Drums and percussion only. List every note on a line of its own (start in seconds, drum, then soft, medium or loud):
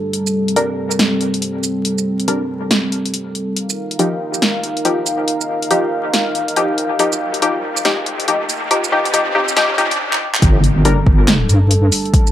0.13 closed hi-hat medium
0.27 shaker medium
0.48 closed hi-hat medium
0.56 closed hi-hat medium
0.91 shaker medium
0.99 snare loud
0.99 closed hi-hat medium
1.21 closed hi-hat soft
1.34 closed hi-hat soft
1.42 closed hi-hat medium
1.63 closed hi-hat soft
1.63 shaker medium
1.85 closed hi-hat medium
1.98 shaker medium
2.20 closed hi-hat soft
2.28 closed hi-hat medium
2.71 snare loud
2.71 closed hi-hat medium
2.92 closed hi-hat soft
3.06 closed hi-hat soft
3.14 closed hi-hat medium
3.35 closed hi-hat medium
3.57 closed hi-hat medium
3.70 shaker medium
3.91 closed hi-hat soft
3.99 closed hi-hat medium
4.34 shaker medium
4.42 snare loud
4.42 closed hi-hat medium
4.63 closed hi-hat soft
4.77 closed hi-hat soft
4.85 closed hi-hat medium
5.06 closed hi-hat medium
5.06 shaker medium
5.28 closed hi-hat medium
5.41 shaker medium
5.62 closed hi-hat medium
5.71 closed hi-hat medium
6.13 snare loud
6.13 closed hi-hat medium
6.35 closed hi-hat medium
6.48 closed hi-hat medium
6.56 closed hi-hat medium
6.78 closed hi-hat medium
6.99 closed hi-hat medium
7.13 shaker medium
7.34 closed hi-hat medium
7.42 closed hi-hat medium
7.77 shaker medium
7.85 snare loud
7.85 closed hi-hat medium
8.06 closed hi-hat medium
8.20 closed hi-hat medium
8.28 closed hi-hat medium
8.49 closed hi-hat medium
8.49 shaker medium
8.71 closed hi-hat medium
8.84 shaker medium
9.05 closed hi-hat medium
9.14 closed hi-hat medium
9.14 shaker medium
9.48 shaker medium
9.57 snare loud
9.57 closed hi-hat medium
9.78 closed hi-hat medium
9.91 closed hi-hat medium
10.13 clap medium
10.34 clap loud
10.42 kick loud
10.42 closed hi-hat medium
10.64 closed hi-hat medium
10.85 closed hi-hat medium
11.06 kick loud
11.28 snare loud
11.28 clap medium
11.28 closed hi-hat medium
11.49 closed hi-hat medium
11.49 shaker soft
11.71 closed hi-hat medium
11.92 open hi-hat medium
11.92 shaker medium
12.05 closed hi-hat soft
12.14 kick loud
12.14 closed hi-hat medium
12.27 shaker medium